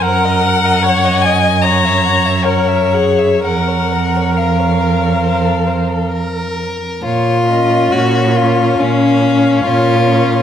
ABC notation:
X:1
M:4/4
L:1/16
Q:1/4=69
K:Bbm
V:1 name="Violin"
g6 a2 b4 d4 | g4 f8 z4 | d2 e2 d4 f4 d4 |]
V:2 name="Violin"
g e g e g e g e g _f g f g f g f | B d B d B d B d c =A c A B4 | F4 G2 F2 D4 F4 |]
V:3 name="Viola"
B4 d2 e2 d4 B2 A2 | B12- B2 z2 | z2 D4 D4 D4 D2 |]
V:4 name="Cello" clef=bass
G,,16 | F,,12- F,,3 z | B,,4 B,,4 B,,4 B,,4 |]